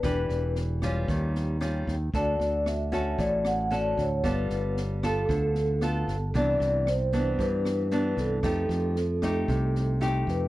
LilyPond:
<<
  \new Staff \with { instrumentName = "Vibraphone" } { \time 4/4 \key d \dorian \tempo 4 = 114 b'4 r2. | d''4 e''4 d''8 fis''8 d''8 cis''8 | b'4 r8 a'4. r4 | d''4 c''4 b'4. a'8~ |
a'2. r8 b'8 | }
  \new Staff \with { instrumentName = "Nylon-string guitar" } { \time 4/4 \key d \dorian << { <d' g' b'>4. <g cis' f'>4. <g cis' eis'>8 r8 | <fis' a'>4. <cis' fis' a'>4. <cis' fis' a'>8 r8 | <b f' a'>4. <b f' a'>4. <b f' a'>8 r8 | <e b d'>4 r8 <e b d'>4. <e b d'>4 |
<a ees' g'>4 r8 <a ees' g'>4. <a ees' g'>4 | } \\ { e2 dis2 | d2 a,2 | g2 d2 | c2 g,2 |
f2 c2 | } >> }
  \new Staff \with { instrumentName = "Fingered electric bass" } { \clef bass \time 4/4 \key d \dorian e,,8 e,,4. dis,4. dis,8 | d,8 d,4. a,,4. d,8 | g,,8 g,,4. d,4. g,,8 | c,8 c,4. g,4. c,8 |
f,8 f,4. c,4. f,8 | }
  \new DrumStaff \with { instrumentName = "Drums" } \drummode { \time 4/4 <bd ss sn>8 sn8 sn8 <bd ss sn>8 <bd sn>8 sn8 <ss sn>8 <bd sn>8 | <bd sn>8 sn8 <ss sn>8 <bd sn>8 <bd sn>8 <ss sn>8 sn8 <bd sn>8 | <bd ss sn>8 sn8 sn8 <bd ss sn>8 <bd sn>8 sn8 <ss sn>8 <bd sn>8 | <bd sn>8 sn8 <ss sn>8 <bd sn>8 <bd sn>8 <ss sn>8 sn8 <bd sn>8 |
<bd ss sn>8 sn8 sn8 <bd ss sn>8 <bd sn>8 sn8 <ss sn>8 <bd sn>8 | }
>>